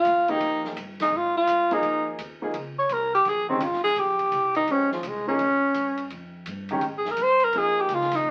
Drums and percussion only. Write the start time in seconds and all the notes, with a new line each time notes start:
0.05 hi-hat pedal, ride
0.28 kick, ride
0.41 ride
0.64 snare
0.77 hi-hat pedal, ride
1.00 snare, ride
1.47 hi-hat pedal, ride
1.71 kick, ride
1.83 ride
2.19 hi-hat pedal, ride
2.54 ride
2.89 hi-hat pedal, ride
3.25 snare, ride
3.49 kick
3.60 hi-hat pedal, ride
3.73 snare
3.85 snare
3.96 ride
4.19 kick, ride
4.32 hi-hat pedal, ride
4.55 ride
4.68 ride
4.91 snare
5.03 hi-hat pedal, ride
5.39 ride
5.74 hi-hat pedal, ride
5.98 ride
6.10 ride
6.46 hi-hat pedal, ride
6.69 ride
6.81 ride
7.05 snare
7.17 hi-hat pedal, ride
7.40 ride
7.53 ride
7.89 hi-hat pedal, ride
8.01 snare
8.11 snare, ride